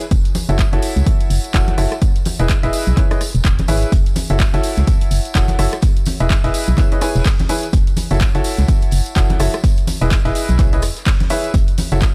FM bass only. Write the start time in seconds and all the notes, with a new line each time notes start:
0.11 F#1
0.49 F#1
0.73 F#1
0.96 C#2
1.30 F#1
1.54 E1
1.78 F#1
2.40 E1
2.63 E1
2.87 B1
3.35 E1
3.45 E1
3.68 G#1
3.92 F#1
4.30 F#1
4.54 F#1
4.78 C#2
5.11 F#1
5.35 E1
5.59 F#1
6.20 E1
6.44 E1
6.68 B1
7.16 E1
7.73 F#1
8.11 F#1
8.35 F#1
8.58 C#2
8.92 F#1
9.16 E1
9.40 F#1
10.01 E1
10.25 E1
10.49 B1
10.83 E1
11.54 F#1
11.92 F#1